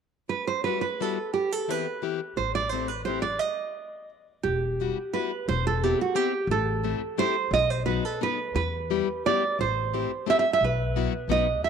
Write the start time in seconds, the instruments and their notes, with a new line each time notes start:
0.29 nylon-string guitar B4
0.47 nylon-string guitar C5
0.64 steel-string acoustic guitar G3 B3 E4 F#4, nylon-string guitar B4
0.81 nylon-string guitar B4
1.01 steel-string acoustic guitar G3 B3 E4 F#4, nylon-string guitar A4
1.34 nylon-string guitar G4
1.52 nylon-string guitar A4
1.68 steel-string acoustic guitar E3 B3 C4 E4 G4, nylon-string guitar B4
2.02 steel-string acoustic guitar E3 B3 C4 E4 G4
2.37 upright bass A1, nylon-string guitar C5
2.55 nylon-string guitar D5
2.69 steel-string acoustic guitar A3 C4, nylon-string guitar C5
2.74 steel-string acoustic guitar E4 G4
2.88 nylon-string guitar B4
3.05 steel-string acoustic guitar A3 C4 E4 G4, nylon-string guitar C5
3.22 nylon-string guitar D5
3.39 nylon-string guitar D#5
4.43 upright bass E1, nylon-string guitar G4
4.80 steel-string acoustic guitar G3 B3 E4 F#4
5.13 steel-string acoustic guitar G3 B3 E4 F#4, nylon-string guitar B4
5.48 upright bass E1, nylon-string guitar C5
5.67 nylon-string guitar A4
5.83 steel-string acoustic guitar B3 C4 E4 G4, nylon-string guitar G4
6.01 nylon-string guitar F#4
6.15 steel-string acoustic guitar B3 C4 E4 G4, nylon-string guitar G4
6.47 upright bass A1
6.51 nylon-string guitar A4
6.84 steel-string acoustic guitar A3 C4 E4 G4
7.18 steel-string acoustic guitar A3 C4 E4 G4, nylon-string guitar C5
7.51 upright bass B1, nylon-string guitar D#5
7.70 nylon-string guitar C5
7.85 steel-string acoustic guitar F#3 B3 D#4 F#4, nylon-string guitar B4
8.05 nylon-string guitar A4
8.21 steel-string acoustic guitar F#3 B3 D#4 F#4, nylon-string guitar B4
8.55 upright bass E2, nylon-string guitar B4
8.90 steel-string acoustic guitar G3 B3 E4 G4
9.26 steel-string acoustic guitar G3 B3 E4 G4, nylon-string guitar D5
9.59 upright bass A1, nylon-string guitar C5
9.94 steel-string acoustic guitar A3 C4 E4 G4
10.26 steel-string acoustic guitar A3 C4 E4 G4, nylon-string guitar E5
10.39 nylon-string guitar E5
10.53 nylon-string guitar E5
10.61 upright bass B1, nylon-string guitar B4
10.96 steel-string acoustic guitar F#3 B3 E4 F#4
11.28 upright bass B1, steel-string acoustic guitar F#3 B3 D#4 F#4, nylon-string guitar D#5
11.61 upright bass E2, nylon-string guitar E5